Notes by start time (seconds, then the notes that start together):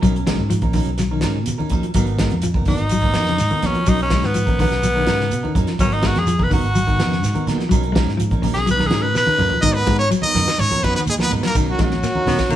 0.01 B1 F#3 C#4 D#4 A#4, kick, closed hi-hat, shekere
0.15 C#4, muted clean electric guitar stroke, closed hi-hat
0.27 F#3 G#3 C#4 D#4 A#4, kick, snare, closed hi-hat, high conga, shekere
0.38 G#2, high conga
0.50 F3, closed hi-hat, shekere
0.62 A#1 C#4 D#4 A#4, kick, closed hi-hat, high conga
0.73 D#3 F#3 C#4 D#4 A#4, kick, open hi-hat, low conga, shekere
0.86 B1, closed hi-hat
0.98 F#3, snare, closed hi-hat, high conga, shekere
1.11 D#3 C#4 D#4 A#4
1.21 G#2 F#3 C#4 D#4 A#4, snare, closed hi-hat, high conga, shekere
1.36 C#3
1.45 B2, closed hi-hat, high conga, shekere
1.58 D#3 C#4 D#4 A#4, high conga
1.69 A#1 F#3 C#4 D#4 A#4, kick, closed hi-hat, low conga, shekere
1.83 F3, closed hi-hat
1.94 G#1 F#3 B3 D#4 A#4, kick, closed hi-hat, shekere
2.07 B3 D#4 A#4, closed hi-hat
2.19 F#3 G#3 B3 D#4 A#4, kick, snare, closed hi-hat, high conga, shekere
2.30 F2, closed hi-hat, high conga
2.42 F3, closed hi-hat, shekere
2.54 F#1 B3 D#4 A#4, kick, high conga
2.65 D#3 F#3 B3 D#4 A#4, kick, open hi-hat, low conga, shekere
2.78 G#1, closed hi-hat
2.89 F#3, closed hi-hat, high conga, shekere
3.01 B3 D#4 A#4, kick, closed hi-hat, low conga
3.14 F2 F#3 B3 D#4 A#4, snare, closed hi-hat, high conga, shekere
3.26 C#3, snare
3.38 G#2, snare, closed hi-hat, high conga, shekere
3.51 D#3 B3 D#4 A#4, closed hi-hat, high conga
3.63 A#1 F#3 B3 C#4 D#4 A#4, snare, closed hi-hat, low conga, shekere
3.75 F3, closed hi-hat
3.86 B1 F#3 C#4 D#4 A#4, kick, closed hi-hat, shekere
3.99 C#4 D#4 A#4, closed hi-hat
4.10 F#3 G#3 C#4 D#4, muted clean electric guitar stroke, kick, snare, closed hi-hat, high conga, shekere
4.23 G#2 B3, snare, high conga
4.34 F3, closed hi-hat, shekere
4.46 A#1 C#4 D#4 A#4, kick, closed hi-hat, high conga
4.59 D#3 F#3 B3 C#4 D#4 A#4, kick, open hi-hat, low conga, shekere
4.71 B1, snare, closed hi-hat
4.83 F#3, closed hi-hat, high conga, shekere
4.95 D#3 C#4 D#4 A#4
5.06 G#2 F#3 C#4 D#4 A#4, snare, closed hi-hat, high conga, shekere
5.20 C#3, snare
5.31 B2, closed hi-hat, shekere
5.43 D#3 C#4 D#4 A#4, high conga
5.55 F#2 F#3 C#4 D#4 A#4, kick, closed hi-hat, low conga, shekere
5.67 F3, snare, closed hi-hat
5.79 G#1 F#3 B3 C#4 A#4, muted clean electric guitar stroke, kick, closed hi-hat, shekere
5.91 B3 D#4 A#4, closed hi-hat
6.03 F#3 G#3 B3 D#4 F#4 A#4, kick, snare, closed hi-hat, high conga, shekere
6.15 F2 G#4, snare, closed hi-hat, high conga
6.27 F3, closed hi-hat, shekere
6.39 F#1 B3 D#4 A#4, kick, high conga
6.43 B4
6.50 D#3 F#3 B3 D#4 F#4 A#4, kick, open hi-hat, low conga, shekere
6.64 G#1, closed hi-hat
6.75 F#3, closed hi-hat, high conga, shekere
6.87 D#3 B3 D#4 A#4, kick, closed hi-hat
6.99 F2 F#3 B3 D#4 A#4, snare, closed hi-hat, high conga, shekere
7.11 C#3, snare
7.23 G#2, snare, closed hi-hat, shekere
7.35 D#3 B3 D#4 A#4, closed hi-hat, high conga
7.47 D#2 F#3 B3 D#4 A#4, snare, closed hi-hat, low conga, shekere
7.58 F3, snare, closed hi-hat
7.69 B1 F#3 C#4 D#4 A#4, kick, closed hi-hat, shekere
7.83 C#4 D#4 A#4, closed hi-hat
7.92 F#3 G#3 C#4 D#4 A#4, kick, snare, closed hi-hat, high conga
7.96 shekere
8.07 G#2, snare, high conga
8.17 F3, closed hi-hat, shekere
8.31 A#1 C#4 D#4 A#4, kick, closed hi-hat, high conga
8.42 C#3 F#3 C#4 D#4 A#4, kick, open hi-hat, low conga, shekere
8.54 B1 G#4, snare, closed hi-hat
8.66 F#3, closed hi-hat, high conga, shekere
8.71 B4
8.77 D#3 D#4 A#4, snare, low conga
8.81 C#4
8.86 G#4
8.91 G#2 F#3 C#4 D#4 A#4, snare, closed hi-hat, high conga, shekere
9.02 C#3 B4
9.15 B2 B4, snare, shekere
9.26 D#3 C#4 D#4 A#4, high conga
9.38 F#2 F#3 C#4 D#4 A#4, mid tom, low conga, shekere
9.50 F3, floor tom
9.61 G#2 D#3 F#3 B3 D#4 A#4 D#5, kick, ride bell, shekere
9.74 B3 D#4 A#4 B4
9.87 G#2 F#3 G#3 B3 D#4 A#4, kick, ride bell, high conga, shekere
9.99 C#4 C#5
10.11 F#3, ride bell, shekere
10.22 B3 D#4 A#4 D#5, muted fingered electric bass stroke, high conga
10.34 F#2 D#3 F#3 B3 D#4 A#4, snare, open hi-hat, low conga, shekere
10.48 snare, ride bell
10.58 G#2 C#4 C#5, muted clean electric guitar stroke, ride bell, high conga, shekere
10.70 F3 B3 D#4 A#4, low conga
10.83 F#2 F#3 B3 D#4 B4, kick, ride bell, high conga, shekere
10.95 D#3 B4, snare
10.99 B3
11.06 D#2 G#4, ride bell, shekere
11.10 G#3
11.18 F3 B3 D#4 A#4 B4, snare, high conga
11.29 G#2 F#3 B3 D#4 A#4, ride bell, low conga, shekere
11.43 F#3 A#4, snare, ride bell
11.47 A#3
11.55 B1 D#3 F#3 C#4 D#4 A#4, kick, ride bell, shekere
11.67 F#3 C#4 D#4 F#4 A#4
11.78 A#1 F#3 G#3 C#4 D#4 A#4, kick, snare, ride bell, high conga, shekere
11.83 F#3 F#4
11.91 snare, high conga
12.03 A#3, snare, ride bell, shekere
12.15 C#4 D#4 A#4, high conga
12.26 B2 D#3 F#3 B3 C#4 D#4 A#4, snare, open hi-hat, low conga, shekere
12.39 kick, snare, ride bell
12.49 D#2 D#3 A#3, ride bell, high conga, shekere